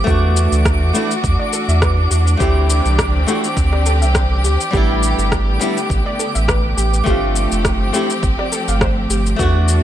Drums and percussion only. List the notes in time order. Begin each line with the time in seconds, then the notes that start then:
0.07 kick, shaker
0.37 shaker
0.52 shaker
0.65 kick, cross-stick, shaker
0.95 shaker
1.11 shaker
1.24 kick, shaker
1.53 shaker
1.69 shaker
1.82 kick, cross-stick, shaker
2.11 shaker
2.27 shaker
2.40 kick, shaker
2.70 shaker
2.86 shaker
2.99 kick, cross-stick, shaker
3.28 shaker
3.44 shaker
3.57 kick, shaker
3.73 cross-stick
3.86 shaker
4.02 shaker
4.15 kick, cross-stick, shaker
4.45 shaker
4.61 shaker
4.73 kick, shaker
5.03 shaker
5.19 shaker
5.32 kick, cross-stick, shaker
5.61 shaker
5.77 shaker
5.90 kick, shaker
6.20 shaker
6.36 shaker
6.48 kick, cross-stick, shaker
6.78 shaker
6.94 shaker
7.06 kick, shaker
7.36 shaker
7.52 shaker
7.65 kick, cross-stick, shaker
7.94 shaker
8.10 shaker
8.23 kick, shaker
8.39 cross-stick
8.52 shaker
8.68 shaker
8.81 kick, cross-stick, shaker
9.10 shaker
9.26 shaker
9.39 kick, shaker
9.68 shaker